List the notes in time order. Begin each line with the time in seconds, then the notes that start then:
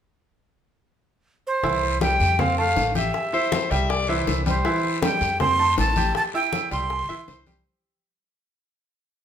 1.47 C5
1.63 C2 E3 E4 E5, high bongo, high conga, long guiro
1.83 high bongo, high conga
2.01 G3 G4 G5, high bongo, high conga, short guiro
2.20 F2, high bongo, high conga, short guiro
2.39 C4 C5 F5 C6, high bongo, high conga, low conga, long guiro
2.58 A3 A4 F5 A5, high bongo, high conga
2.76 A1, high bongo, low bongo, high conga, short guiro
2.95 G4 E5 G5 G6, high conga, short guiro
3.14 high bongo, high conga, long guiro
3.33 E4 C5 E5 E6, high bongo, high conga
3.52 high bongo, high conga, short guiro
3.71 C2 G3 G4 E5 G5, high bongo, high conga, short guiro
3.90 D5, high bongo, high conga, long guiro
4.08 E3 E4 C5 E5, high bongo, high conga
4.27 C2, high bongo, low bongo, high conga, short guiro
4.46 G3 G4 C5 G5, high conga, short guiro
4.65 E3 E4 E5, high bongo, high conga, long guiro
4.84 high bongo, high conga
5.02 G3 G4 G5, high bongo, high conga, short guiro
5.21 F2, high bongo, high conga, short guiro
5.40 C4 C5 C6, high bongo, high conga, low conga, long guiro
5.59 A3 A4 A5, high bongo, high conga
5.78 A1 A5, high bongo, low bongo, high conga, short guiro
5.96 G4 G5 G6, high conga, short guiro
6.15 A5, high bongo, high conga, long guiro
6.34 E4 E5 G5 E6, high bongo, high conga
6.53 high bongo, high conga, short guiro
6.71 C2 G3 G4 G5 C6, high bongo, high conga, short guiro
6.90 high bongo, high conga, long guiro
7.08 B1 E3 E4 E5, high bongo, high conga
7.28 C2 C5, high bongo, low bongo, high conga, short guiro
7.47 G3 G4 G5, high conga, short guiro